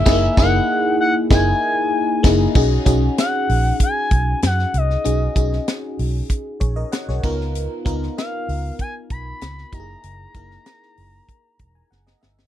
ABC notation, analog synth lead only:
X:1
M:4/4
L:1/8
Q:1/4=96
K:B
V:1 name="Analog synth lead"
e f2 f g3 z | z2 f2 g2 f d- | d2 z6 | z2 ^e2 g b2 a- |
a6 z2 |]